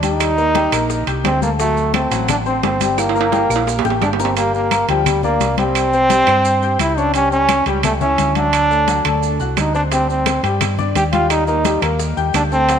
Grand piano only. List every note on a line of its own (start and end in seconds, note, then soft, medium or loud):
0.03 0.31 G3 medium
0.03 0.32 G4 medium
0.03 0.32 G5 medium
0.38 0.52 A#3 medium
0.38 0.52 A#4 medium
0.38 0.52 A#5 medium
0.55 0.69 G3 medium
0.55 0.69 G4 medium
0.55 0.70 G5 medium
0.72 1.01 A#3 medium
0.72 1.01 A#4 medium
0.72 1.01 A#5 medium
1.07 1.36 G4 medium
1.07 1.36 G5 medium
1.07 1.36 G6 medium
1.42 1.56 A3 medium
1.42 1.56 A4 medium
1.42 1.56 A5 medium
1.59 1.88 F#3 medium
1.59 1.88 F#4 medium
1.59 1.88 F#5 medium
1.93 2.08 A3 medium
1.93 2.08 A4 medium
1.93 2.08 A5 medium
2.11 2.40 F#3 medium
2.11 2.40 F#4 medium
2.11 2.40 F#5 loud
2.46 2.74 C4 medium
2.46 2.75 C5 medium
2.46 2.75 C6 medium
2.80 3.09 G3 medium
2.80 3.09 G4 medium
2.80 3.09 G5 medium
3.15 3.29 A#3 medium
3.15 3.29 A#4 medium
3.15 3.30 A#5 medium
3.32 3.47 G3 medium
3.32 3.47 G4 medium
3.32 3.47 G5 medium
3.50 3.78 A#3 medium
3.50 3.79 A#4 medium
3.50 3.79 A#5 medium
3.85 4.13 G4 medium
3.85 4.13 G5 medium
3.85 4.13 G6 medium
4.19 4.34 A#3 medium
4.19 4.34 A#4 medium
4.19 4.34 A#5 medium
4.37 4.65 G3 medium
4.37 4.66 G4 medium
4.37 4.66 G5 medium
4.72 4.86 A#3 medium
4.72 4.86 A#4 medium
4.72 4.86 A#5 medium
4.89 5.18 G3 medium
4.89 5.18 G4 medium
4.89 5.18 G5 medium
5.24 5.52 D4 medium
5.24 5.52 D5 medium
5.24 5.53 D6 medium
5.59 5.87 G3 medium
5.59 5.87 G4 medium
5.59 5.87 G5 medium
5.94 6.08 C4 medium
5.94 6.08 C5 medium
5.94 6.08 C6 medium
6.10 6.25 G3 medium
6.10 6.25 G4 medium
6.10 6.25 G5 medium
6.28 6.56 C4 medium
6.28 6.56 C5 medium
6.28 6.56 C6 medium
6.63 6.91 G4 medium
6.63 6.91 G5 medium
6.63 6.91 G6 medium
6.97 7.11 C#4 medium
6.97 7.12 C#5 medium
6.97 7.12 C#6 medium
7.15 7.43 G3 medium
7.15 7.43 G4 medium
7.15 7.43 G5 medium
7.49 7.63 C#4 medium
7.49 7.64 C#5 medium
7.49 7.64 C#6 medium
7.67 7.95 G3 loud
7.67 7.95 G4 medium
7.67 7.95 G5 medium
8.01 8.30 E4 medium
8.01 8.30 E5 medium
8.01 8.30 E6 medium
8.36 8.64 F#3 medium
8.36 8.64 F#4 medium
8.36 8.65 F#5 medium
8.70 8.84 A3 medium
8.70 8.85 A4 medium
8.70 8.85 A5 medium
8.88 9.02 F#3 medium
8.88 9.02 F#4 medium
8.88 9.02 F#5 medium
9.05 9.33 A3 medium
9.05 9.34 A4 medium
9.05 9.34 A5 medium
9.40 9.68 F#4 medium
9.40 9.68 F#5 medium
9.40 9.69 F#6 medium
9.74 9.88 C4 medium
9.74 9.89 C5 medium
9.74 9.89 C6 medium
9.91 10.20 G3 medium
9.91 10.20 G4 medium
9.91 10.20 G5 medium
10.26 10.41 C4 medium
10.26 10.41 C5 medium
10.26 10.41 C6 medium
10.43 10.72 G3 medium
10.43 10.72 G4 medium
10.43 10.72 G5 medium
10.78 11.07 D4 medium
10.78 11.07 D5 medium
10.78 11.07 D6 medium
11.13 11.41 G3 medium
11.13 11.41 G4 medium
11.13 11.42 G5 medium
11.48 11.62 A#3 medium
11.48 11.62 A#4 medium
11.48 11.62 A#5 medium
11.65 11.79 G3 medium
11.65 11.80 G4 medium
11.65 11.80 G5 medium
11.83 12.11 A#3 medium
11.83 12.11 A#4 medium
11.83 12.11 A#5 medium
12.17 12.45 G4 medium
12.17 12.46 G5 medium
12.17 12.46 G6 medium
12.52 12.66 A3 medium
12.52 12.66 A4 medium
12.52 12.66 A5 medium
12.69 12.79 F#3 medium
12.69 12.79 F#4 medium
12.69 12.79 F#5 medium